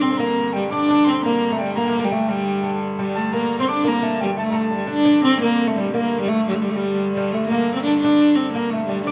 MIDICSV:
0, 0, Header, 1, 5, 480
1, 0, Start_track
1, 0, Key_signature, -2, "minor"
1, 0, Tempo, 348432
1, 982, Time_signature, 6, 3, 24, 8
1, 12558, End_track
2, 0, Start_track
2, 0, Title_t, "Recorder"
2, 0, Program_c, 0, 74
2, 15, Note_on_c, 0, 84, 78
2, 241, Note_on_c, 0, 82, 80
2, 262, Note_off_c, 0, 84, 0
2, 732, Note_on_c, 0, 79, 70
2, 753, Note_off_c, 0, 82, 0
2, 973, Note_on_c, 0, 86, 80
2, 994, Note_off_c, 0, 79, 0
2, 1439, Note_on_c, 0, 84, 79
2, 1460, Note_off_c, 0, 86, 0
2, 1692, Note_on_c, 0, 82, 88
2, 1713, Note_off_c, 0, 84, 0
2, 2183, Note_on_c, 0, 79, 76
2, 2204, Note_off_c, 0, 82, 0
2, 2400, Note_off_c, 0, 79, 0
2, 2409, Note_on_c, 0, 82, 77
2, 2754, Note_off_c, 0, 82, 0
2, 2801, Note_on_c, 0, 79, 79
2, 3131, Note_off_c, 0, 79, 0
2, 3165, Note_on_c, 0, 79, 73
2, 3829, Note_off_c, 0, 79, 0
2, 4342, Note_on_c, 0, 81, 77
2, 4581, Note_on_c, 0, 82, 86
2, 4601, Note_off_c, 0, 81, 0
2, 4944, Note_off_c, 0, 82, 0
2, 4953, Note_on_c, 0, 84, 72
2, 5076, Note_on_c, 0, 86, 88
2, 5097, Note_off_c, 0, 84, 0
2, 5316, Note_off_c, 0, 86, 0
2, 5323, Note_on_c, 0, 82, 78
2, 5561, Note_on_c, 0, 81, 72
2, 5582, Note_off_c, 0, 82, 0
2, 5801, Note_on_c, 0, 79, 71
2, 5821, Note_off_c, 0, 81, 0
2, 6033, Note_off_c, 0, 79, 0
2, 6041, Note_on_c, 0, 81, 82
2, 6107, Note_off_c, 0, 81, 0
2, 6201, Note_on_c, 0, 82, 52
2, 6283, Note_on_c, 0, 81, 63
2, 6303, Note_off_c, 0, 82, 0
2, 6759, Note_off_c, 0, 81, 0
2, 12494, Note_on_c, 0, 86, 96
2, 12558, Note_off_c, 0, 86, 0
2, 12558, End_track
3, 0, Start_track
3, 0, Title_t, "Lute"
3, 0, Program_c, 1, 24
3, 38, Note_on_c, 1, 60, 75
3, 160, Note_off_c, 1, 60, 0
3, 176, Note_on_c, 1, 60, 61
3, 261, Note_off_c, 1, 60, 0
3, 266, Note_on_c, 1, 58, 77
3, 759, Note_off_c, 1, 58, 0
3, 766, Note_on_c, 1, 55, 59
3, 995, Note_on_c, 1, 62, 77
3, 1001, Note_off_c, 1, 55, 0
3, 1228, Note_off_c, 1, 62, 0
3, 1244, Note_on_c, 1, 62, 82
3, 1459, Note_off_c, 1, 62, 0
3, 1467, Note_on_c, 1, 60, 76
3, 1714, Note_off_c, 1, 60, 0
3, 1731, Note_on_c, 1, 58, 76
3, 2087, Note_off_c, 1, 58, 0
3, 2093, Note_on_c, 1, 57, 67
3, 2203, Note_off_c, 1, 57, 0
3, 2213, Note_on_c, 1, 55, 66
3, 2443, Note_on_c, 1, 58, 78
3, 2448, Note_off_c, 1, 55, 0
3, 2589, Note_off_c, 1, 58, 0
3, 2605, Note_on_c, 1, 58, 72
3, 2730, Note_off_c, 1, 58, 0
3, 2747, Note_on_c, 1, 58, 85
3, 2910, Note_off_c, 1, 58, 0
3, 2916, Note_on_c, 1, 57, 67
3, 3148, Note_on_c, 1, 55, 76
3, 3160, Note_off_c, 1, 57, 0
3, 3624, Note_on_c, 1, 57, 69
3, 3645, Note_off_c, 1, 55, 0
3, 3851, Note_off_c, 1, 57, 0
3, 4115, Note_on_c, 1, 55, 84
3, 4592, Note_on_c, 1, 58, 81
3, 4609, Note_off_c, 1, 55, 0
3, 4946, Note_off_c, 1, 58, 0
3, 4952, Note_on_c, 1, 60, 74
3, 5077, Note_off_c, 1, 60, 0
3, 5082, Note_on_c, 1, 62, 73
3, 5289, Note_on_c, 1, 58, 74
3, 5326, Note_off_c, 1, 62, 0
3, 5535, Note_off_c, 1, 58, 0
3, 5541, Note_on_c, 1, 57, 77
3, 5778, Note_on_c, 1, 55, 64
3, 5796, Note_off_c, 1, 57, 0
3, 6015, Note_on_c, 1, 57, 71
3, 6034, Note_off_c, 1, 55, 0
3, 6218, Note_off_c, 1, 57, 0
3, 6234, Note_on_c, 1, 57, 69
3, 6475, Note_on_c, 1, 55, 51
3, 6503, Note_off_c, 1, 57, 0
3, 6710, Note_on_c, 1, 62, 82
3, 6717, Note_off_c, 1, 55, 0
3, 6945, Note_off_c, 1, 62, 0
3, 6962, Note_on_c, 1, 62, 92
3, 7213, Note_on_c, 1, 60, 83
3, 7226, Note_off_c, 1, 62, 0
3, 7454, Note_off_c, 1, 60, 0
3, 7460, Note_on_c, 1, 58, 84
3, 7810, Note_off_c, 1, 58, 0
3, 7815, Note_on_c, 1, 57, 78
3, 7949, Note_off_c, 1, 57, 0
3, 7956, Note_on_c, 1, 55, 74
3, 8184, Note_on_c, 1, 58, 82
3, 8202, Note_off_c, 1, 55, 0
3, 8635, Note_off_c, 1, 58, 0
3, 8642, Note_on_c, 1, 57, 75
3, 8879, Note_off_c, 1, 57, 0
3, 9315, Note_on_c, 1, 55, 77
3, 9604, Note_off_c, 1, 55, 0
3, 9877, Note_on_c, 1, 55, 82
3, 10113, Note_on_c, 1, 57, 78
3, 10120, Note_off_c, 1, 55, 0
3, 10349, Note_off_c, 1, 57, 0
3, 10354, Note_on_c, 1, 58, 87
3, 10833, Note_on_c, 1, 62, 72
3, 10844, Note_off_c, 1, 58, 0
3, 11064, Note_off_c, 1, 62, 0
3, 11081, Note_on_c, 1, 62, 93
3, 11778, Note_on_c, 1, 58, 85
3, 11812, Note_off_c, 1, 62, 0
3, 12016, Note_off_c, 1, 58, 0
3, 12021, Note_on_c, 1, 57, 70
3, 12245, Note_on_c, 1, 55, 70
3, 12268, Note_off_c, 1, 57, 0
3, 12493, Note_on_c, 1, 62, 84
3, 12499, Note_off_c, 1, 55, 0
3, 12558, Note_off_c, 1, 62, 0
3, 12558, End_track
4, 0, Start_track
4, 0, Title_t, "Viola da gamba"
4, 0, Program_c, 2, 42
4, 13, Note_on_c, 2, 60, 94
4, 275, Note_on_c, 2, 58, 92
4, 295, Note_off_c, 2, 60, 0
4, 746, Note_off_c, 2, 58, 0
4, 754, Note_on_c, 2, 55, 81
4, 972, Note_off_c, 2, 55, 0
4, 1004, Note_on_c, 2, 62, 101
4, 1498, Note_on_c, 2, 60, 90
4, 1519, Note_off_c, 2, 62, 0
4, 1716, Note_off_c, 2, 60, 0
4, 1724, Note_on_c, 2, 58, 88
4, 2085, Note_on_c, 2, 57, 72
4, 2105, Note_off_c, 2, 58, 0
4, 2196, Note_off_c, 2, 57, 0
4, 2204, Note_on_c, 2, 55, 85
4, 2430, Note_on_c, 2, 58, 97
4, 2450, Note_off_c, 2, 55, 0
4, 2816, Note_on_c, 2, 55, 80
4, 2837, Note_off_c, 2, 58, 0
4, 2929, Note_on_c, 2, 57, 86
4, 2950, Note_off_c, 2, 55, 0
4, 3146, Note_on_c, 2, 55, 95
4, 3167, Note_off_c, 2, 57, 0
4, 3870, Note_off_c, 2, 55, 0
4, 4133, Note_on_c, 2, 55, 77
4, 4366, Note_on_c, 2, 57, 83
4, 4387, Note_off_c, 2, 55, 0
4, 4600, Note_off_c, 2, 57, 0
4, 4626, Note_on_c, 2, 58, 94
4, 4947, Note_off_c, 2, 58, 0
4, 4973, Note_on_c, 2, 60, 80
4, 5076, Note_off_c, 2, 60, 0
4, 5100, Note_on_c, 2, 62, 89
4, 5345, Note_on_c, 2, 58, 91
4, 5366, Note_off_c, 2, 62, 0
4, 5810, Note_off_c, 2, 58, 0
4, 5827, Note_on_c, 2, 55, 84
4, 5928, Note_off_c, 2, 55, 0
4, 6070, Note_on_c, 2, 57, 77
4, 6500, Note_off_c, 2, 57, 0
4, 6554, Note_on_c, 2, 55, 77
4, 6736, Note_off_c, 2, 55, 0
4, 6744, Note_on_c, 2, 62, 113
4, 7196, Note_off_c, 2, 62, 0
4, 7223, Note_on_c, 2, 60, 110
4, 7452, Note_off_c, 2, 60, 0
4, 7466, Note_on_c, 2, 58, 100
4, 7814, Note_on_c, 2, 57, 81
4, 7835, Note_off_c, 2, 58, 0
4, 7938, Note_off_c, 2, 57, 0
4, 7947, Note_on_c, 2, 55, 85
4, 8173, Note_off_c, 2, 55, 0
4, 8184, Note_on_c, 2, 58, 96
4, 8523, Note_off_c, 2, 58, 0
4, 8546, Note_on_c, 2, 55, 80
4, 8661, Note_on_c, 2, 57, 102
4, 8682, Note_off_c, 2, 55, 0
4, 8901, Note_off_c, 2, 57, 0
4, 8909, Note_on_c, 2, 55, 83
4, 9020, Note_on_c, 2, 57, 81
4, 9041, Note_off_c, 2, 55, 0
4, 9121, Note_on_c, 2, 55, 81
4, 9141, Note_off_c, 2, 57, 0
4, 9216, Note_on_c, 2, 57, 79
4, 9237, Note_off_c, 2, 55, 0
4, 9289, Note_on_c, 2, 55, 95
4, 9310, Note_off_c, 2, 57, 0
4, 9613, Note_off_c, 2, 55, 0
4, 9831, Note_on_c, 2, 55, 85
4, 10086, Note_on_c, 2, 57, 95
4, 10106, Note_off_c, 2, 55, 0
4, 10302, Note_off_c, 2, 57, 0
4, 10310, Note_on_c, 2, 58, 92
4, 10662, Note_off_c, 2, 58, 0
4, 10670, Note_on_c, 2, 60, 92
4, 10777, Note_off_c, 2, 60, 0
4, 10786, Note_on_c, 2, 62, 102
4, 11012, Note_off_c, 2, 62, 0
4, 11020, Note_on_c, 2, 62, 105
4, 11505, Note_on_c, 2, 60, 101
4, 11525, Note_off_c, 2, 62, 0
4, 11748, Note_off_c, 2, 60, 0
4, 11756, Note_on_c, 2, 58, 84
4, 11990, Note_on_c, 2, 57, 79
4, 12010, Note_off_c, 2, 58, 0
4, 12220, Note_off_c, 2, 57, 0
4, 12228, Note_on_c, 2, 55, 85
4, 12461, Note_off_c, 2, 55, 0
4, 12469, Note_on_c, 2, 62, 116
4, 12558, Note_off_c, 2, 62, 0
4, 12558, End_track
5, 0, Start_track
5, 0, Title_t, "Hurdy-gurdy"
5, 0, Program_c, 3, 110
5, 0, Note_on_c, 3, 43, 66
5, 0, Note_on_c, 3, 50, 70
5, 985, Note_off_c, 3, 43, 0
5, 985, Note_on_c, 3, 43, 68
5, 992, Note_off_c, 3, 50, 0
5, 992, Note_on_c, 3, 50, 72
5, 6726, Note_off_c, 3, 43, 0
5, 6726, Note_on_c, 3, 43, 68
5, 6728, Note_off_c, 3, 50, 0
5, 6728, Note_on_c, 3, 50, 71
5, 12489, Note_off_c, 3, 50, 0
5, 12489, Note_on_c, 3, 50, 68
5, 12496, Note_off_c, 3, 43, 0
5, 12496, Note_on_c, 3, 43, 71
5, 12558, Note_off_c, 3, 43, 0
5, 12558, Note_off_c, 3, 50, 0
5, 12558, End_track
0, 0, End_of_file